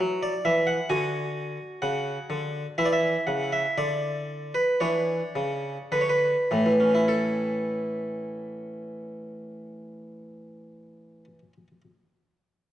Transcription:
Already playing: E4
0.00 F#3
0.22 D5
0.45 E3 E5
0.67 F#5
0.89 D3 F#4 G#5
1.82 C#3 F#5
2.30 D3
2.78 E3 E4 E5
2.86 D5
2.93 E5
3.27 C#3 F#5
3.52 E5
3.77 D3 D5
4.54 B4
4.80 E3 D4 C#5
5.36 C#3
5.92 D3 B4
6.01 C#5
6.09 B4
6.51 A2 E3
6.66 E3
6.80 C#4
6.94 E4
7.08 A4

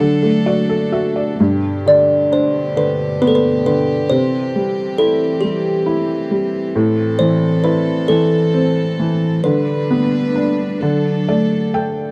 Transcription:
Already playing: D4 A4
0.00 D3 F#3
0.23 A3
0.46 F#4 D5
0.69 A4
0.92 F#4 E5
1.16 D5
1.40 G2 B2 D3 G4
1.86 D3 D5
2.32 D4 C5
2.76 D3 B4
3.22 B3 B4
3.27 A4
3.35 B4
3.66 D3 B4
4.10 C3 E3 C4 C5
4.56 G3
4.98 E4 A4
5.41 G3 G4
5.86 E4
6.31 G3
6.73 A2 A4
7.19 E3 C5
7.64 E4 B4
8.08 E3 A4
8.54 C4
8.99 E3
9.42 D3 G3 D4 B4
9.91 B3
10.36 D4
10.79 D3 F#3 A4
11.29 A3 D5
11.74 A4 G5

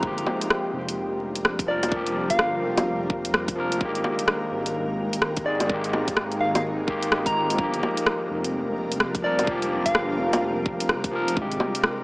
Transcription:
0.00 G1 F3 G3 A#3 D4 F4 A#4, kick
0.07 G4
0.18 closed hi-hat
0.27 low bongo
0.41 closed hi-hat
0.50 cross-stick
0.73 F1
0.89 closed hi-hat
1.35 closed hi-hat
1.45 cross-stick
1.59 kick, closed hi-hat
1.66 F3 A#3 D5
1.70 A#4
1.83 closed hi-hat, low bongo
1.88 F3 A#3, kick
1.96 G4
2.07 closed hi-hat
2.30 G1 F5, kick, closed hi-hat
2.39 cross-stick
2.63 F1
2.78 closed hi-hat, low bongo
3.10 kick
3.25 closed hi-hat
3.34 cross-stick
3.48 kick, closed hi-hat
3.56 F3 A#3
3.60 A#4
3.72 closed hi-hat
3.77 G#1 D#3 G#3 D#4 G4, kick
3.83 A#3 G4
3.95 closed hi-hat
4.04 low bongo
4.19 closed hi-hat
4.28 cross-stick
4.51 G#1
4.66 closed hi-hat
5.13 closed hi-hat
5.22 cross-stick
5.37 kick, closed hi-hat
5.44 D#3 G#3 A#3 D5
5.48 G#4
5.60 closed hi-hat, low bongo
5.66 D#3 G#3, kick
5.71 A#3 G4
5.84 closed hi-hat
5.93 low bongo
6.07 G#1, kick, closed hi-hat
6.17 cross-stick
6.32 closed hi-hat
6.40 G#1 F5
6.55 F5, closed hi-hat, low bongo
6.86 D#3 G#3 A#3 G4, kick
7.03 closed hi-hat
7.12 cross-stick
7.25 D#3 G#3 A#3 A#5, kick, closed hi-hat
7.29 F4
7.35 G#1
7.50 closed hi-hat
7.55 G1 F3 G3 A#3 D4 F4 A#4, kick
7.63 G4
7.74 closed hi-hat
7.83 low bongo
7.97 closed hi-hat
8.06 cross-stick
8.30 F1
8.44 closed hi-hat
8.92 closed hi-hat
9.00 cross-stick
9.15 kick, closed hi-hat
9.22 F3 A#3 D5
9.26 A#4
9.39 closed hi-hat, low bongo
9.43 F3 A#3, kick
9.51 G4
9.62 closed hi-hat
9.86 G1 F5, kick, closed hi-hat
9.95 cross-stick
10.18 F1
10.33 closed hi-hat, low bongo
10.66 kick
10.80 closed hi-hat
10.89 cross-stick
11.04 kick, closed hi-hat
11.12 F3 A#3
11.16 A#4
11.28 closed hi-hat
11.33 G#1 C3 G#3 D#4 G4 C5, kick
11.37 G#3
11.42 G4
11.52 closed hi-hat
11.60 low bongo
11.75 closed hi-hat
11.84 cross-stick

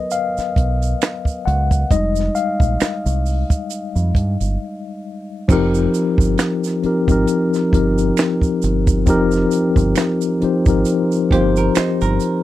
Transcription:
Already playing: F#3 B3 A#4 B4 D#5
0.11 F5, closed hi-hat, shaker
0.37 muted fingered electric bass stroke, snare, shaker
0.56 B1, kick, closed hi-hat
0.82 closed hi-hat, shaker
1.02 finger snap, snare, closed hi-hat, shaker
1.25 kick, shaker
1.46 C#2 F#5, closed hi-hat
1.71 kick, closed hi-hat, shaker
1.91 F1 G3 G#3 D#4 D#5, kick, closed hi-hat, shaker
2.16 snare, shaker
2.35 F5, closed hi-hat, shaker
2.60 A#1, kick, shaker
2.80 finger snap, muted fingered electric bass stroke, snare, closed hi-hat, shaker
3.06 C2, shaker
3.26 open hi-hat, shaker
3.50 kick, closed hi-hat, shaker
3.70 closed hi-hat, shaker
3.96 F2, shaker
4.15 G2, kick, closed hi-hat
4.40 G1, closed hi-hat, shaker
5.48 F1 F3 C4 D#4 G4, kick, crash, shaker
5.52 A#4
5.75 shaker
5.94 closed hi-hat, shaker
6.18 G1, kick, shaker
6.38 finger snap, snare, closed hi-hat, shaker
6.64 snare, shaker
6.83 F3 C4 D#4 G4 A#4, muted fingered electric bass stroke, closed hi-hat
7.07 G#1 F3 C4 D#4 G4, kick, closed hi-hat, shaker
7.12 A#4
7.27 closed hi-hat, shaker
7.54 snare, shaker
7.71 G1 F3 C4 D#4 G4 A#4, kick, closed hi-hat
7.98 closed hi-hat, shaker
8.17 finger snap, closed hi-hat, shaker
8.19 finger snap, snare
8.41 kick, shaker
8.62 G1, closed hi-hat, shaker
8.87 kick, shaker
9.06 F1 F3 C4 D#4 G4, kick, closed hi-hat, shaker
9.10 A#4
9.31 shaker
9.36 snare
9.51 closed hi-hat, shaker
9.76 G1, kick, closed hi-hat, shaker
9.96 finger snap, closed hi-hat, shaker
9.98 finger snap, snare
10.21 shaker
10.40 F3 C4 D#4 G4, muted fingered electric bass stroke, closed hi-hat
10.44 C5
10.65 G#1 F3 C4 D#4 G4 A#4, kick, closed hi-hat, shaker
10.85 closed hi-hat, shaker
11.12 shaker
11.29 G1 F3 A#3 C4 D#4 G4, kick, closed hi-hat
11.34 C5
11.56 A#4, shaker
11.75 D#4 C5, finger snap, muted fingered electric bass stroke, snare, closed hi-hat, shaker
12.01 G1 A#4, shaker
12.20 closed hi-hat, shaker

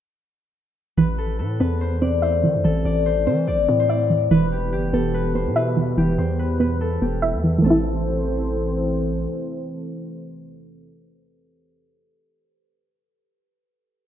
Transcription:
0.97 A1 E3 C4 A4 B4 C5
1.18 A4
1.39 A2 A4
1.60 E2 C4 B4
1.81 C5
2.02 C4 D5
2.22 C5 E5
2.43 E3
2.54 E2
2.64 A1 E3 A4
2.85 A1 D5
3.06 C5
3.27 E3 C4 C5
3.47 A1 D5
3.68 A2 C4
3.79 C5
3.89 D5 E5
4.10 E3
4.31 E1 E3 B3 G4 B4
4.52 G4
4.73 G1 G4
4.84 E1
4.93 E1 B3 A4
5.14 B4
5.35 B3 C5
5.46 B2
5.56 B4 E5
5.76 E3
5.97 E1 E3 G4
6.18 E2 C5
6.39 B4
6.60 B3 B4
6.81 A4
7.02 E1 B3 G4
7.22 E5
7.34 E2
7.44 E3
7.58 E3 A3
7.64 A1 E3 C4 A4 C5
7.70 E4

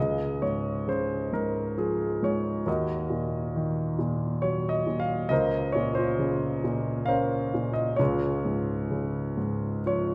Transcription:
Already playing: C#2 D#5
0.00 G#4
0.42 G#2 C#5
0.87 C#3 C5
1.32 G#2 A#4
1.77 F3 G#4
2.23 G#2 C#5
2.66 D#2 F#4 A#4 D#5
3.10 A#2
3.56 D#3
3.99 A#2
4.42 F#3 C#5
4.69 D#5
4.87 A#2
5.00 F5
5.29 C#2 A#4 C5 D#5
5.72 A#2 C#5
5.95 F4 C5
6.19 C#3
6.64 A#2
7.06 C#4 A#4 C5 F5
7.54 A#2
7.73 D#5
7.96 C#2 F4 G#4 C#5
8.45 G#2
8.91 C#3
9.37 G#2
9.86 F3 C#5

